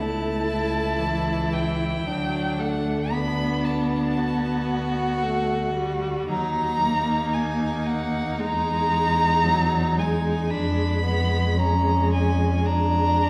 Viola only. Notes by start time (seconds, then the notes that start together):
Already playing: A3
0.99 E3
2.06 F#3
2.58 A3
3.11 B3
5.22 A3
5.75 G3
6.28 F#3
6.83 A#3
8.40 G#3
9.44 F#3
9.98 G#3
10.52 G#3